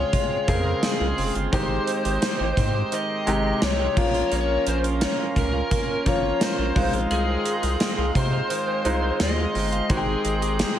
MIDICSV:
0, 0, Header, 1, 7, 480
1, 0, Start_track
1, 0, Key_signature, -4, "major"
1, 0, Tempo, 697674
1, 1051, Time_signature, 4, 2, 24, 8
1, 7424, End_track
2, 0, Start_track
2, 0, Title_t, "Analog synth pad"
2, 0, Program_c, 0, 89
2, 0, Note_on_c, 0, 56, 82
2, 0, Note_on_c, 0, 68, 69
2, 0, Note_on_c, 0, 77, 76
2, 0, Note_on_c, 0, 84, 90
2, 1023, Note_off_c, 0, 77, 0
2, 1031, Note_off_c, 0, 68, 0
2, 1052, Note_on_c, 0, 75, 71
2, 1052, Note_on_c, 0, 79, 69
2, 2703, Note_off_c, 0, 56, 0
2, 2703, Note_off_c, 0, 84, 0
2, 2714, Note_off_c, 0, 75, 0
2, 2715, Note_off_c, 0, 79, 0
2, 2731, Note_on_c, 0, 61, 78
2, 2731, Note_on_c, 0, 70, 84
2, 2731, Note_on_c, 0, 82, 92
2, 2732, Note_on_c, 0, 77, 73
2, 4631, Note_off_c, 0, 61, 0
2, 4632, Note_off_c, 0, 70, 0
2, 4632, Note_off_c, 0, 82, 0
2, 4652, Note_on_c, 0, 75, 74
2, 4653, Note_on_c, 0, 56, 86
2, 4653, Note_on_c, 0, 84, 92
2, 6783, Note_off_c, 0, 77, 0
2, 6812, Note_on_c, 0, 79, 65
2, 7424, Note_off_c, 0, 56, 0
2, 7424, Note_off_c, 0, 75, 0
2, 7424, Note_off_c, 0, 79, 0
2, 7424, Note_off_c, 0, 84, 0
2, 7424, End_track
3, 0, Start_track
3, 0, Title_t, "Lead electric guitar"
3, 0, Program_c, 1, 29
3, 0, Note_on_c, 1, 73, 111
3, 337, Note_off_c, 1, 73, 0
3, 340, Note_on_c, 1, 70, 94
3, 580, Note_on_c, 1, 68, 90
3, 582, Note_off_c, 1, 70, 0
3, 910, Note_off_c, 1, 68, 0
3, 1059, Note_on_c, 1, 72, 100
3, 1773, Note_off_c, 1, 72, 0
3, 1782, Note_on_c, 1, 72, 98
3, 2019, Note_on_c, 1, 75, 108
3, 2023, Note_off_c, 1, 72, 0
3, 2467, Note_off_c, 1, 75, 0
3, 2500, Note_on_c, 1, 73, 96
3, 2971, Note_off_c, 1, 73, 0
3, 2980, Note_on_c, 1, 73, 97
3, 3199, Note_off_c, 1, 73, 0
3, 3221, Note_on_c, 1, 72, 94
3, 3285, Note_off_c, 1, 72, 0
3, 3460, Note_on_c, 1, 73, 99
3, 3524, Note_off_c, 1, 73, 0
3, 3701, Note_on_c, 1, 70, 92
3, 4148, Note_off_c, 1, 70, 0
3, 4180, Note_on_c, 1, 73, 93
3, 4418, Note_off_c, 1, 73, 0
3, 4421, Note_on_c, 1, 72, 91
3, 4751, Note_off_c, 1, 72, 0
3, 4900, Note_on_c, 1, 68, 91
3, 5618, Note_on_c, 1, 72, 92
3, 5637, Note_off_c, 1, 68, 0
3, 6306, Note_off_c, 1, 72, 0
3, 6338, Note_on_c, 1, 75, 98
3, 6818, Note_on_c, 1, 68, 83
3, 6828, Note_off_c, 1, 75, 0
3, 7424, Note_off_c, 1, 68, 0
3, 7424, End_track
4, 0, Start_track
4, 0, Title_t, "Clean electric guitar"
4, 0, Program_c, 2, 27
4, 0, Note_on_c, 2, 56, 61
4, 0, Note_on_c, 2, 60, 63
4, 0, Note_on_c, 2, 65, 67
4, 87, Note_off_c, 2, 65, 0
4, 88, Note_off_c, 2, 56, 0
4, 91, Note_on_c, 2, 56, 90
4, 95, Note_on_c, 2, 65, 73
4, 208, Note_off_c, 2, 60, 0
4, 211, Note_on_c, 2, 60, 59
4, 328, Note_off_c, 2, 56, 0
4, 331, Note_on_c, 2, 56, 65
4, 442, Note_off_c, 2, 65, 0
4, 451, Note_on_c, 2, 65, 64
4, 568, Note_off_c, 2, 60, 0
4, 571, Note_on_c, 2, 60, 58
4, 683, Note_off_c, 2, 65, 0
4, 691, Note_on_c, 2, 65, 67
4, 807, Note_off_c, 2, 60, 0
4, 810, Note_on_c, 2, 60, 62
4, 922, Note_off_c, 2, 65, 0
4, 931, Note_on_c, 2, 65, 69
4, 1050, Note_on_c, 2, 51, 84
4, 1051, Note_off_c, 2, 65, 0
4, 1054, Note_on_c, 2, 67, 74
4, 1168, Note_off_c, 2, 60, 0
4, 1171, Note_on_c, 2, 60, 61
4, 1287, Note_off_c, 2, 56, 0
4, 1290, Note_on_c, 2, 56, 56
4, 1402, Note_off_c, 2, 67, 0
4, 1411, Note_on_c, 2, 67, 64
4, 1523, Note_off_c, 2, 60, 0
4, 1531, Note_on_c, 2, 60, 62
4, 1641, Note_off_c, 2, 67, 0
4, 1650, Note_on_c, 2, 67, 72
4, 1762, Note_off_c, 2, 60, 0
4, 1770, Note_on_c, 2, 60, 66
4, 1882, Note_off_c, 2, 67, 0
4, 1890, Note_on_c, 2, 67, 69
4, 2001, Note_off_c, 2, 51, 0
4, 2005, Note_off_c, 2, 67, 0
4, 2010, Note_on_c, 2, 51, 87
4, 2013, Note_on_c, 2, 67, 74
4, 2122, Note_off_c, 2, 60, 0
4, 2130, Note_on_c, 2, 60, 62
4, 2240, Note_off_c, 2, 56, 0
4, 2249, Note_on_c, 2, 56, 65
4, 2360, Note_off_c, 2, 67, 0
4, 2369, Note_on_c, 2, 67, 64
4, 2481, Note_off_c, 2, 60, 0
4, 2489, Note_on_c, 2, 60, 65
4, 2601, Note_off_c, 2, 67, 0
4, 2610, Note_on_c, 2, 67, 66
4, 2726, Note_off_c, 2, 56, 0
4, 2729, Note_on_c, 2, 58, 78
4, 2778, Note_off_c, 2, 51, 0
4, 2778, Note_off_c, 2, 60, 0
4, 2778, Note_off_c, 2, 67, 0
4, 2851, Note_on_c, 2, 65, 73
4, 2962, Note_off_c, 2, 58, 0
4, 2970, Note_on_c, 2, 58, 88
4, 2971, Note_off_c, 2, 65, 0
4, 2974, Note_on_c, 2, 65, 71
4, 3090, Note_on_c, 2, 61, 60
4, 3202, Note_off_c, 2, 58, 0
4, 3210, Note_on_c, 2, 58, 58
4, 3327, Note_off_c, 2, 65, 0
4, 3330, Note_on_c, 2, 65, 67
4, 3441, Note_off_c, 2, 61, 0
4, 3450, Note_on_c, 2, 61, 64
4, 3567, Note_off_c, 2, 65, 0
4, 3570, Note_on_c, 2, 65, 69
4, 3681, Note_off_c, 2, 61, 0
4, 3689, Note_on_c, 2, 61, 64
4, 3806, Note_off_c, 2, 65, 0
4, 3809, Note_on_c, 2, 65, 70
4, 3920, Note_off_c, 2, 58, 0
4, 3928, Note_on_c, 2, 58, 86
4, 3930, Note_off_c, 2, 65, 0
4, 3933, Note_on_c, 2, 65, 72
4, 4040, Note_off_c, 2, 61, 0
4, 4048, Note_on_c, 2, 61, 60
4, 4162, Note_off_c, 2, 58, 0
4, 4170, Note_on_c, 2, 58, 64
4, 4287, Note_off_c, 2, 65, 0
4, 4290, Note_on_c, 2, 65, 68
4, 4401, Note_off_c, 2, 61, 0
4, 4409, Note_on_c, 2, 61, 63
4, 4528, Note_off_c, 2, 65, 0
4, 4530, Note_on_c, 2, 65, 68
4, 4650, Note_on_c, 2, 51, 80
4, 4698, Note_off_c, 2, 58, 0
4, 4698, Note_off_c, 2, 61, 0
4, 4768, Note_off_c, 2, 65, 0
4, 4771, Note_on_c, 2, 65, 73
4, 4886, Note_off_c, 2, 65, 0
4, 4888, Note_off_c, 2, 51, 0
4, 4890, Note_on_c, 2, 51, 86
4, 4895, Note_on_c, 2, 65, 73
4, 5011, Note_on_c, 2, 60, 63
4, 5130, Note_on_c, 2, 56, 59
4, 5242, Note_off_c, 2, 65, 0
4, 5250, Note_on_c, 2, 65, 67
4, 5366, Note_off_c, 2, 60, 0
4, 5369, Note_on_c, 2, 60, 62
4, 5481, Note_off_c, 2, 65, 0
4, 5489, Note_on_c, 2, 65, 71
4, 5607, Note_off_c, 2, 60, 0
4, 5610, Note_on_c, 2, 60, 63
4, 5720, Note_off_c, 2, 65, 0
4, 5728, Note_on_c, 2, 65, 69
4, 5845, Note_off_c, 2, 65, 0
4, 5846, Note_off_c, 2, 51, 0
4, 5849, Note_on_c, 2, 51, 87
4, 5853, Note_on_c, 2, 65, 75
4, 5966, Note_off_c, 2, 60, 0
4, 5968, Note_on_c, 2, 60, 61
4, 6086, Note_off_c, 2, 56, 0
4, 6089, Note_on_c, 2, 56, 65
4, 6199, Note_off_c, 2, 65, 0
4, 6207, Note_on_c, 2, 65, 66
4, 6326, Note_off_c, 2, 60, 0
4, 6329, Note_on_c, 2, 60, 61
4, 6442, Note_off_c, 2, 65, 0
4, 6450, Note_on_c, 2, 65, 65
4, 6568, Note_off_c, 2, 60, 0
4, 6570, Note_on_c, 2, 60, 62
4, 6681, Note_off_c, 2, 65, 0
4, 6689, Note_on_c, 2, 65, 72
4, 6807, Note_off_c, 2, 51, 0
4, 6810, Note_off_c, 2, 65, 0
4, 6810, Note_on_c, 2, 51, 86
4, 6814, Note_on_c, 2, 67, 70
4, 6927, Note_off_c, 2, 60, 0
4, 6930, Note_on_c, 2, 60, 57
4, 7049, Note_off_c, 2, 56, 0
4, 7052, Note_on_c, 2, 56, 58
4, 7166, Note_off_c, 2, 67, 0
4, 7169, Note_on_c, 2, 67, 67
4, 7288, Note_off_c, 2, 60, 0
4, 7408, Note_off_c, 2, 67, 0
4, 7424, Note_off_c, 2, 51, 0
4, 7424, Note_off_c, 2, 56, 0
4, 7424, End_track
5, 0, Start_track
5, 0, Title_t, "Grand piano"
5, 0, Program_c, 3, 0
5, 0, Control_c, 3, 64, 127
5, 0, Note_on_c, 3, 49, 68
5, 0, Note_on_c, 3, 56, 70
5, 0, Note_on_c, 3, 65, 65
5, 0, Note_on_c, 3, 68, 83
5, 326, Note_on_c, 3, 60, 77
5, 329, Note_off_c, 3, 49, 0
5, 329, Note_on_c, 3, 49, 68
5, 331, Note_off_c, 3, 65, 0
5, 331, Note_on_c, 3, 65, 64
5, 335, Note_off_c, 3, 68, 0
5, 335, Note_on_c, 3, 68, 85
5, 999, Note_off_c, 3, 60, 0
5, 1000, Note_off_c, 3, 49, 0
5, 1001, Note_off_c, 3, 65, 0
5, 1003, Note_off_c, 3, 68, 0
5, 1046, Note_off_c, 3, 56, 0
5, 1046, Note_on_c, 3, 56, 71
5, 1049, Note_on_c, 3, 60, 66
5, 1052, Note_on_c, 3, 63, 69
5, 1055, Note_on_c, 3, 67, 81
5, 1061, Control_c, 3, 64, 0
5, 1184, Control_c, 3, 64, 127
5, 1942, Note_off_c, 3, 56, 0
5, 1943, Note_off_c, 3, 60, 0
5, 1945, Note_off_c, 3, 63, 0
5, 1946, Note_off_c, 3, 67, 0
5, 2246, Note_on_c, 3, 56, 77
5, 2249, Note_on_c, 3, 48, 67
5, 2252, Note_on_c, 3, 63, 70
5, 2255, Note_on_c, 3, 67, 85
5, 2727, Note_on_c, 3, 53, 80
5, 2728, Note_off_c, 3, 56, 0
5, 2730, Note_off_c, 3, 48, 0
5, 2730, Note_on_c, 3, 58, 75
5, 2731, Note_off_c, 3, 63, 0
5, 2732, Note_on_c, 3, 61, 70
5, 2733, Note_off_c, 3, 67, 0
5, 2735, Note_on_c, 3, 65, 91
5, 2738, Control_c, 3, 64, 0
5, 2866, Control_c, 3, 64, 127
5, 3622, Note_off_c, 3, 53, 0
5, 3624, Note_off_c, 3, 58, 0
5, 3625, Note_off_c, 3, 61, 0
5, 3626, Note_off_c, 3, 65, 0
5, 4166, Note_on_c, 3, 53, 75
5, 4168, Note_on_c, 3, 58, 66
5, 4171, Note_on_c, 3, 61, 72
5, 4174, Note_on_c, 3, 65, 85
5, 4645, Note_off_c, 3, 65, 0
5, 4647, Note_on_c, 3, 56, 80
5, 4648, Note_off_c, 3, 53, 0
5, 4649, Note_off_c, 3, 58, 0
5, 4649, Note_on_c, 3, 60, 74
5, 4651, Note_off_c, 3, 61, 0
5, 4652, Note_on_c, 3, 63, 74
5, 4655, Note_on_c, 3, 65, 94
5, 4658, Control_c, 3, 64, 0
5, 4766, Control_c, 3, 64, 127
5, 5542, Note_off_c, 3, 56, 0
5, 5544, Note_off_c, 3, 60, 0
5, 5545, Note_off_c, 3, 63, 0
5, 5546, Note_off_c, 3, 65, 0
5, 6087, Note_on_c, 3, 56, 75
5, 6090, Note_on_c, 3, 60, 67
5, 6093, Note_on_c, 3, 63, 69
5, 6096, Note_on_c, 3, 65, 86
5, 6759, Note_off_c, 3, 56, 0
5, 6761, Note_off_c, 3, 60, 0
5, 6762, Note_off_c, 3, 63, 0
5, 6763, Note_off_c, 3, 65, 0
5, 6807, Note_on_c, 3, 56, 72
5, 6810, Note_on_c, 3, 60, 67
5, 6813, Note_on_c, 3, 63, 68
5, 6815, Note_on_c, 3, 66, 64
5, 6818, Control_c, 3, 64, 0
5, 6858, Note_off_c, 3, 66, 0
5, 6861, Note_on_c, 3, 79, 83
5, 6946, Control_c, 3, 64, 127
5, 7424, Note_off_c, 3, 56, 0
5, 7424, Note_off_c, 3, 60, 0
5, 7424, Note_off_c, 3, 63, 0
5, 7424, Note_off_c, 3, 79, 0
5, 7424, End_track
6, 0, Start_track
6, 0, Title_t, "Analog synth bass"
6, 0, Program_c, 4, 38
6, 330, Note_on_c, 4, 41, 97
6, 510, Note_off_c, 4, 41, 0
6, 692, Note_on_c, 4, 36, 85
6, 781, Note_off_c, 4, 36, 0
6, 813, Note_on_c, 4, 29, 81
6, 902, Note_off_c, 4, 29, 0
6, 932, Note_on_c, 4, 31, 86
6, 1021, Note_off_c, 4, 31, 0
6, 1051, Note_on_c, 4, 32, 112
6, 1231, Note_off_c, 4, 32, 0
6, 1412, Note_on_c, 4, 32, 93
6, 1501, Note_off_c, 4, 32, 0
6, 1652, Note_on_c, 4, 32, 94
6, 1741, Note_off_c, 4, 32, 0
6, 1770, Note_on_c, 4, 44, 97
6, 1950, Note_off_c, 4, 44, 0
6, 2252, Note_on_c, 4, 32, 89
6, 2431, Note_off_c, 4, 32, 0
6, 2493, Note_on_c, 4, 36, 85
6, 2672, Note_off_c, 4, 36, 0
6, 2731, Note_on_c, 4, 34, 92
6, 2911, Note_off_c, 4, 34, 0
6, 2971, Note_on_c, 4, 34, 106
6, 3151, Note_off_c, 4, 34, 0
6, 3212, Note_on_c, 4, 34, 100
6, 3481, Note_off_c, 4, 34, 0
6, 3689, Note_on_c, 4, 37, 91
6, 3869, Note_off_c, 4, 37, 0
6, 4170, Note_on_c, 4, 32, 96
6, 4350, Note_off_c, 4, 32, 0
6, 4531, Note_on_c, 4, 34, 91
6, 4621, Note_off_c, 4, 34, 0
6, 4651, Note_on_c, 4, 36, 99
6, 4741, Note_off_c, 4, 36, 0
6, 4771, Note_on_c, 4, 34, 92
6, 4861, Note_off_c, 4, 34, 0
6, 4891, Note_on_c, 4, 36, 107
6, 5071, Note_off_c, 4, 36, 0
6, 5251, Note_on_c, 4, 36, 97
6, 5341, Note_off_c, 4, 36, 0
6, 5491, Note_on_c, 4, 36, 98
6, 5581, Note_off_c, 4, 36, 0
6, 5609, Note_on_c, 4, 48, 99
6, 5790, Note_off_c, 4, 48, 0
6, 6091, Note_on_c, 4, 36, 93
6, 6271, Note_off_c, 4, 36, 0
6, 6332, Note_on_c, 4, 39, 88
6, 6511, Note_off_c, 4, 39, 0
6, 6573, Note_on_c, 4, 31, 96
6, 6752, Note_off_c, 4, 31, 0
6, 6811, Note_on_c, 4, 32, 104
6, 6991, Note_off_c, 4, 32, 0
6, 7052, Note_on_c, 4, 32, 102
6, 7321, Note_off_c, 4, 32, 0
6, 7424, End_track
7, 0, Start_track
7, 0, Title_t, "Drums"
7, 90, Note_on_c, 9, 36, 96
7, 90, Note_on_c, 9, 42, 88
7, 159, Note_off_c, 9, 36, 0
7, 159, Note_off_c, 9, 42, 0
7, 330, Note_on_c, 9, 42, 68
7, 331, Note_on_c, 9, 36, 93
7, 399, Note_off_c, 9, 42, 0
7, 400, Note_off_c, 9, 36, 0
7, 570, Note_on_c, 9, 38, 102
7, 570, Note_on_c, 9, 42, 87
7, 572, Note_on_c, 9, 54, 70
7, 638, Note_off_c, 9, 42, 0
7, 639, Note_off_c, 9, 38, 0
7, 640, Note_off_c, 9, 54, 0
7, 813, Note_on_c, 9, 46, 74
7, 881, Note_off_c, 9, 46, 0
7, 932, Note_on_c, 9, 42, 47
7, 1001, Note_off_c, 9, 42, 0
7, 1051, Note_on_c, 9, 36, 109
7, 1051, Note_on_c, 9, 42, 80
7, 1120, Note_off_c, 9, 36, 0
7, 1120, Note_off_c, 9, 42, 0
7, 1290, Note_on_c, 9, 42, 88
7, 1359, Note_off_c, 9, 42, 0
7, 1411, Note_on_c, 9, 42, 63
7, 1480, Note_off_c, 9, 42, 0
7, 1528, Note_on_c, 9, 42, 95
7, 1528, Note_on_c, 9, 54, 61
7, 1531, Note_on_c, 9, 38, 109
7, 1597, Note_off_c, 9, 42, 0
7, 1597, Note_off_c, 9, 54, 0
7, 1600, Note_off_c, 9, 38, 0
7, 1769, Note_on_c, 9, 36, 94
7, 1772, Note_on_c, 9, 42, 71
7, 1838, Note_off_c, 9, 36, 0
7, 1841, Note_off_c, 9, 42, 0
7, 2010, Note_on_c, 9, 42, 92
7, 2079, Note_off_c, 9, 42, 0
7, 2250, Note_on_c, 9, 42, 70
7, 2319, Note_off_c, 9, 42, 0
7, 2490, Note_on_c, 9, 38, 109
7, 2490, Note_on_c, 9, 42, 84
7, 2492, Note_on_c, 9, 54, 69
7, 2558, Note_off_c, 9, 42, 0
7, 2559, Note_off_c, 9, 38, 0
7, 2560, Note_off_c, 9, 54, 0
7, 2730, Note_on_c, 9, 36, 117
7, 2731, Note_on_c, 9, 49, 72
7, 2799, Note_off_c, 9, 36, 0
7, 2799, Note_off_c, 9, 49, 0
7, 2851, Note_on_c, 9, 42, 49
7, 2920, Note_off_c, 9, 42, 0
7, 2970, Note_on_c, 9, 42, 81
7, 3038, Note_off_c, 9, 42, 0
7, 3210, Note_on_c, 9, 42, 87
7, 3279, Note_off_c, 9, 42, 0
7, 3332, Note_on_c, 9, 42, 62
7, 3401, Note_off_c, 9, 42, 0
7, 3449, Note_on_c, 9, 42, 87
7, 3449, Note_on_c, 9, 54, 59
7, 3452, Note_on_c, 9, 38, 117
7, 3517, Note_off_c, 9, 42, 0
7, 3517, Note_off_c, 9, 54, 0
7, 3520, Note_off_c, 9, 38, 0
7, 3689, Note_on_c, 9, 36, 88
7, 3692, Note_on_c, 9, 42, 67
7, 3758, Note_off_c, 9, 36, 0
7, 3761, Note_off_c, 9, 42, 0
7, 3930, Note_on_c, 9, 36, 104
7, 3931, Note_on_c, 9, 42, 96
7, 3999, Note_off_c, 9, 36, 0
7, 3999, Note_off_c, 9, 42, 0
7, 4170, Note_on_c, 9, 42, 73
7, 4171, Note_on_c, 9, 36, 94
7, 4239, Note_off_c, 9, 42, 0
7, 4240, Note_off_c, 9, 36, 0
7, 4411, Note_on_c, 9, 38, 113
7, 4411, Note_on_c, 9, 42, 90
7, 4413, Note_on_c, 9, 54, 73
7, 4479, Note_off_c, 9, 42, 0
7, 4480, Note_off_c, 9, 38, 0
7, 4481, Note_off_c, 9, 54, 0
7, 4651, Note_on_c, 9, 36, 109
7, 4652, Note_on_c, 9, 46, 72
7, 4720, Note_off_c, 9, 36, 0
7, 4721, Note_off_c, 9, 46, 0
7, 4771, Note_on_c, 9, 42, 46
7, 4840, Note_off_c, 9, 42, 0
7, 4890, Note_on_c, 9, 42, 83
7, 4959, Note_off_c, 9, 42, 0
7, 5129, Note_on_c, 9, 42, 88
7, 5198, Note_off_c, 9, 42, 0
7, 5250, Note_on_c, 9, 42, 65
7, 5319, Note_off_c, 9, 42, 0
7, 5368, Note_on_c, 9, 42, 86
7, 5368, Note_on_c, 9, 54, 65
7, 5371, Note_on_c, 9, 38, 109
7, 5437, Note_off_c, 9, 42, 0
7, 5437, Note_off_c, 9, 54, 0
7, 5440, Note_off_c, 9, 38, 0
7, 5609, Note_on_c, 9, 36, 93
7, 5612, Note_on_c, 9, 42, 69
7, 5678, Note_off_c, 9, 36, 0
7, 5681, Note_off_c, 9, 42, 0
7, 5850, Note_on_c, 9, 42, 93
7, 5919, Note_off_c, 9, 42, 0
7, 6090, Note_on_c, 9, 42, 67
7, 6158, Note_off_c, 9, 42, 0
7, 6329, Note_on_c, 9, 38, 114
7, 6329, Note_on_c, 9, 42, 86
7, 6331, Note_on_c, 9, 54, 70
7, 6397, Note_off_c, 9, 42, 0
7, 6398, Note_off_c, 9, 38, 0
7, 6400, Note_off_c, 9, 54, 0
7, 6572, Note_on_c, 9, 46, 74
7, 6641, Note_off_c, 9, 46, 0
7, 6691, Note_on_c, 9, 42, 49
7, 6759, Note_off_c, 9, 42, 0
7, 6809, Note_on_c, 9, 42, 82
7, 6810, Note_on_c, 9, 36, 115
7, 6878, Note_off_c, 9, 42, 0
7, 6879, Note_off_c, 9, 36, 0
7, 7049, Note_on_c, 9, 42, 86
7, 7118, Note_off_c, 9, 42, 0
7, 7171, Note_on_c, 9, 42, 66
7, 7240, Note_off_c, 9, 42, 0
7, 7288, Note_on_c, 9, 42, 91
7, 7288, Note_on_c, 9, 54, 63
7, 7291, Note_on_c, 9, 38, 115
7, 7357, Note_off_c, 9, 42, 0
7, 7357, Note_off_c, 9, 54, 0
7, 7360, Note_off_c, 9, 38, 0
7, 7424, End_track
0, 0, End_of_file